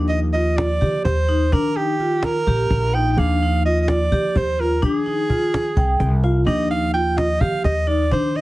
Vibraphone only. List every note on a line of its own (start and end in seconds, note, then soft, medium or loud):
0.10 0.25 D#4 medium
0.35 0.64 F4 medium
0.81 1.11 G4 medium
1.29 1.43 D#4 medium
1.53 1.67 D4 medium
1.76 1.91 D#4 medium
2.00 2.30 F4 medium
2.47 2.77 G4 medium
2.95 3.09 D#4 medium
3.18 3.33 D4 medium
3.43 3.57 D#4 medium
3.66 3.95 F4 medium
4.12 4.42 G4 medium
4.59 4.74 F4 medium
4.82 4.97 D4 medium
5.06 5.21 D#4 medium
5.30 5.59 F4 medium
5.77 6.06 G5 medium
6.24 6.38 F4 medium
6.47 6.62 D4 medium
6.70 6.85 D#4 medium
6.94 7.24 F4 medium
7.41 7.71 G4 medium
7.87 8.02 D#4 medium
8.12 8.26 D4 medium
8.35 8.41 D#4 medium